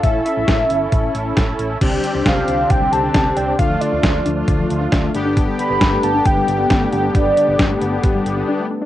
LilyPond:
<<
  \new Staff \with { instrumentName = "Soft synth lead" } { \time 4/4 \key g \mixolydian \tempo 4 = 135 e''8 e''2 r4. | r4 f''4 g''8 a''4 g''8 | f''8 d''4 r2 r8 | r8 b''4 a''8 g''4. g''8 |
d''2 r2 | }
  \new Staff \with { instrumentName = "Analog polysynth" } { \time 4/4 \key g \mixolydian <cis' e' a'>1 | <c' d' g'>1 | <a d' f'>2.~ <a d' f'>8 <b d' g'>8~ | <b d' g'>1~ |
<b d' g'>2.~ <b d' g'>8 r8 | }
  \new Staff \with { instrumentName = "Analog synth pad" } { \time 4/4 \key g \mixolydian << { r1 | g'1 | a'1~ | a'1~ |
a'1 | } \\ { r1 | <d c'>1 | <f d'>2.~ <f d'>8 <g b>8~ | <g b>1~ |
<g b>1 | } >> }
  \new Staff \with { instrumentName = "Synth pluck" } { \time 4/4 \key g \mixolydian r1 | d16 g16 d16 d'16 d''16 c'16 d'16 d''16 d16 g16 d16 d'16 d''16 c'16 d''16 d''16 | d16 f16 d16 d'16 d''16 a16 d'16 d''16 d16 f16 d16 d'16 d''16 a16 d'16 d'16 | d16 g16 d16 b16 d'16 a16 b16 d'16 d16 g16 d16 b16 d'16 a16 d'16 d'16 |
d16 g16 d16 b16 d'16 a16 b16 d'16 d16 g16 d16 b16 d'16 a16 d'16 d'16 | }
  \new Staff \with { instrumentName = "Fingered electric bass" } { \clef bass \time 4/4 \key g \mixolydian a,,8 r16 a,,16 a,,8 g,,8 a,,8 a,,8 a,,8 a,,8 | c,8 r16 c,16 c,8 c,8 c,8 c,8 c,8 c,8 | d,8 r16 d,16 d,8 d,8 d,8 d,8 d,8 g,,8~ | g,,8 r16 g,,16 g,,8 g,,8 g,,8 g,,8 g,,8 g,,8 |
g,,8 r16 g,,16 g,,8 g,,8 g,,8 g,,8 r4 | }
  \new DrumStaff \with { instrumentName = "Drums" } \drummode { \time 4/4 <hh bd>8 hh8 <hh bd sn>8 hh8 <hh bd>8 hh8 <hh bd sn>8 hh8 | <cymc hh bd>8 hh8 <hh bd sn>8 hh8 <hh bd>8 hh8 <hh bd sn>8 hh8 | <hh bd>8 hh8 <hh bd sn>8 hh8 <hh bd>8 hh8 <hh bd sn>8 hh8 | <hh bd>8 hh8 <hh bd sn>8 hh8 <hh bd>8 hh8 <hh bd sn>8 hh8 |
<hh bd>8 hh8 <hh bd sn>8 hh8 <hh bd>8 hh8 r4 | }
>>